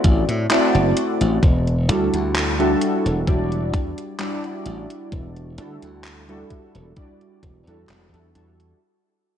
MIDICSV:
0, 0, Header, 1, 4, 480
1, 0, Start_track
1, 0, Tempo, 923077
1, 742, Time_signature, 4, 2, 24, 8
1, 4877, End_track
2, 0, Start_track
2, 0, Title_t, "Synth keys"
2, 0, Program_c, 0, 88
2, 0, Note_on_c, 0, 57, 81
2, 0, Note_on_c, 0, 60, 73
2, 0, Note_on_c, 0, 64, 75
2, 0, Note_on_c, 0, 66, 72
2, 0, Note_on_c, 0, 74, 90
2, 234, Note_off_c, 0, 57, 0
2, 235, Note_off_c, 0, 60, 0
2, 236, Note_off_c, 0, 64, 0
2, 237, Note_off_c, 0, 66, 0
2, 238, Note_off_c, 0, 74, 0
2, 259, Note_on_c, 0, 57, 95
2, 261, Note_on_c, 0, 60, 85
2, 262, Note_on_c, 0, 64, 86
2, 265, Note_on_c, 0, 66, 88
2, 267, Note_on_c, 0, 74, 106
2, 727, Note_off_c, 0, 57, 0
2, 728, Note_off_c, 0, 60, 0
2, 728, Note_off_c, 0, 64, 0
2, 730, Note_off_c, 0, 66, 0
2, 731, Note_off_c, 0, 74, 0
2, 980, Note_on_c, 0, 55, 74
2, 982, Note_on_c, 0, 62, 66
2, 984, Note_on_c, 0, 64, 66
2, 987, Note_on_c, 0, 66, 68
2, 989, Note_on_c, 0, 69, 81
2, 1318, Note_off_c, 0, 55, 0
2, 1319, Note_off_c, 0, 62, 0
2, 1320, Note_off_c, 0, 64, 0
2, 1321, Note_off_c, 0, 66, 0
2, 1322, Note_off_c, 0, 69, 0
2, 1346, Note_on_c, 0, 55, 89
2, 1348, Note_on_c, 0, 62, 84
2, 1349, Note_on_c, 0, 64, 81
2, 1351, Note_on_c, 0, 66, 81
2, 1354, Note_on_c, 0, 69, 99
2, 1674, Note_off_c, 0, 55, 0
2, 1674, Note_off_c, 0, 62, 0
2, 1675, Note_off_c, 0, 64, 0
2, 1676, Note_off_c, 0, 66, 0
2, 1677, Note_off_c, 0, 69, 0
2, 1699, Note_on_c, 0, 55, 79
2, 1701, Note_on_c, 0, 62, 73
2, 1702, Note_on_c, 0, 64, 72
2, 1704, Note_on_c, 0, 66, 70
2, 1707, Note_on_c, 0, 74, 87
2, 2153, Note_off_c, 0, 55, 0
2, 2154, Note_off_c, 0, 62, 0
2, 2155, Note_off_c, 0, 64, 0
2, 2156, Note_off_c, 0, 66, 0
2, 2157, Note_off_c, 0, 74, 0
2, 2177, Note_on_c, 0, 55, 92
2, 2181, Note_on_c, 0, 62, 86
2, 2185, Note_on_c, 0, 64, 88
2, 2189, Note_on_c, 0, 66, 84
2, 2193, Note_on_c, 0, 74, 102
2, 2873, Note_off_c, 0, 55, 0
2, 2875, Note_off_c, 0, 62, 0
2, 2876, Note_off_c, 0, 64, 0
2, 2878, Note_off_c, 0, 66, 0
2, 2880, Note_off_c, 0, 74, 0
2, 2902, Note_on_c, 0, 55, 72
2, 2903, Note_on_c, 0, 62, 65
2, 2905, Note_on_c, 0, 64, 65
2, 2907, Note_on_c, 0, 66, 64
2, 2909, Note_on_c, 0, 69, 80
2, 3238, Note_off_c, 0, 55, 0
2, 3239, Note_off_c, 0, 62, 0
2, 3240, Note_off_c, 0, 64, 0
2, 3241, Note_off_c, 0, 66, 0
2, 3242, Note_off_c, 0, 69, 0
2, 3266, Note_on_c, 0, 55, 89
2, 3269, Note_on_c, 0, 62, 81
2, 3270, Note_on_c, 0, 64, 80
2, 3272, Note_on_c, 0, 66, 82
2, 3274, Note_on_c, 0, 69, 98
2, 3594, Note_off_c, 0, 55, 0
2, 3595, Note_off_c, 0, 62, 0
2, 3596, Note_off_c, 0, 64, 0
2, 3597, Note_off_c, 0, 66, 0
2, 3598, Note_off_c, 0, 69, 0
2, 3620, Note_on_c, 0, 55, 78
2, 3623, Note_on_c, 0, 62, 72
2, 3624, Note_on_c, 0, 64, 69
2, 3626, Note_on_c, 0, 66, 72
2, 3628, Note_on_c, 0, 74, 83
2, 3963, Note_off_c, 0, 55, 0
2, 3964, Note_off_c, 0, 62, 0
2, 3965, Note_off_c, 0, 64, 0
2, 3966, Note_off_c, 0, 66, 0
2, 3967, Note_off_c, 0, 74, 0
2, 3988, Note_on_c, 0, 55, 84
2, 3989, Note_on_c, 0, 62, 79
2, 3991, Note_on_c, 0, 64, 75
2, 3993, Note_on_c, 0, 66, 77
2, 3995, Note_on_c, 0, 69, 93
2, 4198, Note_off_c, 0, 55, 0
2, 4199, Note_off_c, 0, 62, 0
2, 4200, Note_off_c, 0, 64, 0
2, 4201, Note_off_c, 0, 66, 0
2, 4201, Note_off_c, 0, 69, 0
2, 4226, Note_on_c, 0, 55, 72
2, 4228, Note_on_c, 0, 62, 65
2, 4230, Note_on_c, 0, 64, 67
2, 4232, Note_on_c, 0, 66, 65
2, 4234, Note_on_c, 0, 69, 80
2, 4313, Note_off_c, 0, 55, 0
2, 4314, Note_off_c, 0, 62, 0
2, 4316, Note_off_c, 0, 64, 0
2, 4316, Note_off_c, 0, 66, 0
2, 4317, Note_off_c, 0, 69, 0
2, 4340, Note_on_c, 0, 55, 81
2, 4341, Note_on_c, 0, 62, 73
2, 4343, Note_on_c, 0, 64, 73
2, 4345, Note_on_c, 0, 66, 74
2, 4347, Note_on_c, 0, 69, 86
2, 4567, Note_off_c, 0, 55, 0
2, 4568, Note_off_c, 0, 62, 0
2, 4569, Note_off_c, 0, 64, 0
2, 4570, Note_off_c, 0, 66, 0
2, 4571, Note_off_c, 0, 69, 0
2, 4877, End_track
3, 0, Start_track
3, 0, Title_t, "Slap bass"
3, 0, Program_c, 1, 36
3, 23, Note_on_c, 1, 33, 99
3, 122, Note_off_c, 1, 33, 0
3, 148, Note_on_c, 1, 45, 82
3, 237, Note_off_c, 1, 45, 0
3, 388, Note_on_c, 1, 30, 101
3, 477, Note_off_c, 1, 30, 0
3, 629, Note_on_c, 1, 33, 92
3, 717, Note_off_c, 1, 33, 0
3, 742, Note_on_c, 1, 28, 97
3, 983, Note_off_c, 1, 28, 0
3, 983, Note_on_c, 1, 38, 81
3, 1082, Note_off_c, 1, 38, 0
3, 1111, Note_on_c, 1, 38, 83
3, 1424, Note_off_c, 1, 38, 0
3, 1590, Note_on_c, 1, 28, 82
3, 1678, Note_off_c, 1, 28, 0
3, 1702, Note_on_c, 1, 28, 93
3, 1942, Note_off_c, 1, 28, 0
3, 1942, Note_on_c, 1, 40, 79
3, 2042, Note_off_c, 1, 40, 0
3, 2422, Note_on_c, 1, 33, 90
3, 2522, Note_off_c, 1, 33, 0
3, 2663, Note_on_c, 1, 28, 92
3, 2902, Note_off_c, 1, 28, 0
3, 2902, Note_on_c, 1, 38, 77
3, 3002, Note_off_c, 1, 38, 0
3, 3029, Note_on_c, 1, 38, 81
3, 3343, Note_off_c, 1, 38, 0
3, 3510, Note_on_c, 1, 28, 81
3, 3598, Note_off_c, 1, 28, 0
3, 3863, Note_on_c, 1, 28, 93
3, 3962, Note_off_c, 1, 28, 0
3, 3990, Note_on_c, 1, 40, 78
3, 4078, Note_off_c, 1, 40, 0
3, 4103, Note_on_c, 1, 28, 92
3, 4202, Note_off_c, 1, 28, 0
3, 4230, Note_on_c, 1, 40, 85
3, 4318, Note_off_c, 1, 40, 0
3, 4344, Note_on_c, 1, 40, 88
3, 4534, Note_off_c, 1, 40, 0
3, 4877, End_track
4, 0, Start_track
4, 0, Title_t, "Drums"
4, 22, Note_on_c, 9, 42, 93
4, 23, Note_on_c, 9, 36, 108
4, 74, Note_off_c, 9, 42, 0
4, 75, Note_off_c, 9, 36, 0
4, 149, Note_on_c, 9, 42, 54
4, 201, Note_off_c, 9, 42, 0
4, 263, Note_on_c, 9, 39, 115
4, 263, Note_on_c, 9, 42, 54
4, 315, Note_off_c, 9, 39, 0
4, 315, Note_off_c, 9, 42, 0
4, 390, Note_on_c, 9, 42, 26
4, 442, Note_off_c, 9, 42, 0
4, 503, Note_on_c, 9, 42, 93
4, 555, Note_off_c, 9, 42, 0
4, 629, Note_on_c, 9, 42, 53
4, 681, Note_off_c, 9, 42, 0
4, 743, Note_on_c, 9, 36, 123
4, 743, Note_on_c, 9, 42, 54
4, 795, Note_off_c, 9, 36, 0
4, 795, Note_off_c, 9, 42, 0
4, 871, Note_on_c, 9, 42, 27
4, 923, Note_off_c, 9, 42, 0
4, 984, Note_on_c, 9, 42, 90
4, 1036, Note_off_c, 9, 42, 0
4, 1111, Note_on_c, 9, 42, 51
4, 1163, Note_off_c, 9, 42, 0
4, 1225, Note_on_c, 9, 39, 123
4, 1225, Note_on_c, 9, 42, 53
4, 1277, Note_off_c, 9, 39, 0
4, 1277, Note_off_c, 9, 42, 0
4, 1352, Note_on_c, 9, 42, 26
4, 1404, Note_off_c, 9, 42, 0
4, 1464, Note_on_c, 9, 42, 89
4, 1516, Note_off_c, 9, 42, 0
4, 1592, Note_on_c, 9, 42, 50
4, 1644, Note_off_c, 9, 42, 0
4, 1703, Note_on_c, 9, 36, 119
4, 1704, Note_on_c, 9, 42, 50
4, 1755, Note_off_c, 9, 36, 0
4, 1756, Note_off_c, 9, 42, 0
4, 1830, Note_on_c, 9, 42, 27
4, 1882, Note_off_c, 9, 42, 0
4, 1943, Note_on_c, 9, 36, 105
4, 1943, Note_on_c, 9, 42, 89
4, 1995, Note_off_c, 9, 36, 0
4, 1995, Note_off_c, 9, 42, 0
4, 2069, Note_on_c, 9, 42, 52
4, 2121, Note_off_c, 9, 42, 0
4, 2182, Note_on_c, 9, 39, 119
4, 2182, Note_on_c, 9, 42, 50
4, 2234, Note_off_c, 9, 39, 0
4, 2234, Note_off_c, 9, 42, 0
4, 2309, Note_on_c, 9, 42, 26
4, 2361, Note_off_c, 9, 42, 0
4, 2421, Note_on_c, 9, 42, 86
4, 2473, Note_off_c, 9, 42, 0
4, 2549, Note_on_c, 9, 42, 51
4, 2601, Note_off_c, 9, 42, 0
4, 2663, Note_on_c, 9, 36, 115
4, 2663, Note_on_c, 9, 42, 51
4, 2715, Note_off_c, 9, 36, 0
4, 2715, Note_off_c, 9, 42, 0
4, 2790, Note_on_c, 9, 42, 26
4, 2842, Note_off_c, 9, 42, 0
4, 2902, Note_on_c, 9, 42, 86
4, 2954, Note_off_c, 9, 42, 0
4, 3029, Note_on_c, 9, 42, 49
4, 3081, Note_off_c, 9, 42, 0
4, 3142, Note_on_c, 9, 39, 116
4, 3142, Note_on_c, 9, 42, 49
4, 3194, Note_off_c, 9, 39, 0
4, 3194, Note_off_c, 9, 42, 0
4, 3271, Note_on_c, 9, 42, 24
4, 3323, Note_off_c, 9, 42, 0
4, 3383, Note_on_c, 9, 36, 61
4, 3383, Note_on_c, 9, 42, 83
4, 3435, Note_off_c, 9, 36, 0
4, 3435, Note_off_c, 9, 42, 0
4, 3510, Note_on_c, 9, 42, 49
4, 3562, Note_off_c, 9, 42, 0
4, 3622, Note_on_c, 9, 42, 47
4, 3623, Note_on_c, 9, 36, 115
4, 3674, Note_off_c, 9, 42, 0
4, 3675, Note_off_c, 9, 36, 0
4, 3750, Note_on_c, 9, 42, 25
4, 3802, Note_off_c, 9, 42, 0
4, 3863, Note_on_c, 9, 36, 102
4, 3863, Note_on_c, 9, 42, 84
4, 3915, Note_off_c, 9, 36, 0
4, 3915, Note_off_c, 9, 42, 0
4, 3991, Note_on_c, 9, 42, 48
4, 4043, Note_off_c, 9, 42, 0
4, 4104, Note_on_c, 9, 39, 109
4, 4104, Note_on_c, 9, 42, 46
4, 4156, Note_off_c, 9, 39, 0
4, 4156, Note_off_c, 9, 42, 0
4, 4232, Note_on_c, 9, 42, 24
4, 4284, Note_off_c, 9, 42, 0
4, 4344, Note_on_c, 9, 42, 85
4, 4396, Note_off_c, 9, 42, 0
4, 4471, Note_on_c, 9, 42, 47
4, 4523, Note_off_c, 9, 42, 0
4, 4877, End_track
0, 0, End_of_file